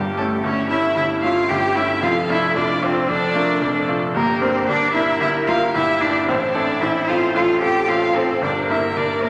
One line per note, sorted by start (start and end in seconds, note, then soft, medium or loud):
0.00 0.16 G1 medium
0.00 0.16 G2 medium
0.00 0.15 G3 medium
0.00 0.45 G4 medium
0.17 0.43 A3 medium
0.17 0.42 A3 soft
0.17 0.42 C#4 soft
0.17 0.42 E4 medium
0.17 0.25 A4 medium
0.43 0.69 G1 medium
0.43 0.69 G2 medium
0.43 0.69 C#4 medium
0.43 1.49 E4 medium
0.43 0.69 C#5 medium
0.69 0.94 A3 soft
0.69 0.94 C#4 soft
0.69 0.95 E4 medium
0.69 0.95 E4 soft
0.69 0.96 E5 medium
0.95 1.22 G1 medium
0.95 1.22 G2 medium
0.95 1.03 E4 medium
0.95 1.05 E5 medium
1.22 1.47 A3 soft
1.22 1.47 C#4 soft
1.22 1.48 E4 medium
1.22 1.51 F4 medium
1.22 1.50 F5 medium
1.48 1.76 G1 medium
1.48 1.75 G2 medium
1.48 2.01 E4 medium
1.48 1.77 G4 medium
1.48 1.78 G5 medium
1.75 2.00 A3 soft
1.75 2.00 C#4 soft
1.75 2.02 E4 medium
1.75 2.00 E4 medium
1.75 2.04 E5 medium
2.02 2.28 F1 medium
2.02 2.28 F2 medium
2.02 2.11 F4 medium
2.02 2.58 A4 medium
2.02 2.31 F5 medium
2.29 2.53 A3 medium
2.29 2.53 D4 soft
2.29 2.54 E4 loud
2.29 2.53 F4 medium
2.29 2.56 E5 medium
2.55 2.82 F1 medium
2.55 2.82 F2 medium
2.55 2.63 D4 medium
2.55 3.11 F4 medium
2.55 2.85 D5 medium
2.82 3.06 A3 soft
2.82 3.10 C4 medium
2.82 3.07 D4 soft
2.82 3.07 F4 medium
2.82 3.09 C5 medium
3.09 3.34 F1 medium
3.09 3.35 F2 medium
3.09 3.88 D4 loud
3.09 3.37 A4 medium
3.09 3.87 D5 medium
3.35 3.59 A3 medium
3.35 3.59 D4 soft
3.35 3.59 F4 medium
3.35 3.64 A#4 medium
3.61 3.87 F1 medium
3.61 3.87 F2 medium
3.61 4.15 A4 medium
3.88 4.12 A3 soft
3.88 4.12 D4 soft
3.88 4.13 F4 medium
4.14 4.41 G1 medium
4.14 4.41 G2 medium
4.14 4.43 A#3 medium
4.14 4.70 G4 medium
4.14 4.40 A#4 medium
4.41 4.66 A#3 medium
4.41 4.68 C4 medium
4.41 4.66 D4 soft
4.41 4.66 A#4 medium
4.41 4.67 C5 medium
4.68 4.94 G1 medium
4.68 4.94 G2 medium
4.68 4.94 D4 loud
4.68 5.75 A#4 medium
4.68 4.93 D5 medium
4.93 5.19 A#3 soft
4.93 5.19 D4 medium
4.93 5.21 E4 medium
4.93 5.20 A#4 medium
4.93 5.20 E5 medium
5.21 5.47 G1 medium
5.21 5.47 G2 medium
5.21 5.30 E4 loud
5.21 5.29 E5 medium
5.47 5.72 A#3 soft
5.47 5.72 E4 soft
5.47 5.55 F4 loud
5.47 5.73 A#4 medium
5.47 5.73 F5 medium
5.74 6.01 G1 medium
5.74 6.01 G2 medium
5.74 6.02 E4 loud
5.74 6.27 G4 medium
5.74 6.03 E5 medium
6.01 6.26 A#3 soft
6.01 6.27 D4 medium
6.01 6.26 E4 soft
6.01 6.26 A#4 medium
6.01 6.26 D5 medium
6.27 6.55 A1 medium
6.27 6.54 A2 medium
6.27 6.36 C4 medium
6.27 6.83 E4 medium
6.27 6.56 C5 medium
6.54 6.79 C4 medium
6.54 6.82 D4 medium
6.54 6.79 E4 medium
6.54 6.79 A4 medium
6.54 6.81 D5 medium
6.81 7.08 A1 medium
6.81 7.08 A2 medium
6.81 7.09 E4 medium
6.81 7.37 C5 medium
6.81 6.90 E5 medium
7.08 7.33 C4 soft
7.08 7.33 E4 soft
7.08 7.34 F4 medium
7.08 7.33 A4 soft
7.08 7.17 F5 medium
7.35 7.61 A1 medium
7.35 7.61 A2 medium
7.35 7.62 F4 medium
7.35 8.44 A4 medium
7.35 7.43 F5 medium
7.62 7.86 C4 soft
7.62 7.86 F4 soft
7.62 7.90 G4 medium
7.62 7.87 A4 soft
7.62 7.90 G5 medium
7.88 8.15 A1 medium
7.88 8.15 A2 medium
7.88 8.18 F4 medium
7.88 8.18 F5 medium
8.15 8.40 C4 soft
8.15 8.44 C4 medium
8.15 8.40 F4 soft
8.15 8.41 A4 soft
8.15 8.43 C5 medium
8.42 8.69 G1 medium
8.42 8.69 G2 medium
8.42 8.69 D4 medium
8.42 9.29 A#4 medium
8.42 8.52 D5 medium
8.70 8.94 A#3 soft
8.70 8.94 E4 soft
8.70 8.78 E4 medium
8.70 8.95 A#4 medium
8.70 8.98 E5 medium
8.96 9.23 G1 soft
8.96 9.23 G2 soft
8.96 9.23 D4 medium
8.96 9.25 D5 medium
9.23 9.29 A#3 soft
9.23 9.29 A#3 medium
9.23 9.29 E4 soft
9.23 9.29 A#4 medium
9.23 9.29 A#4 soft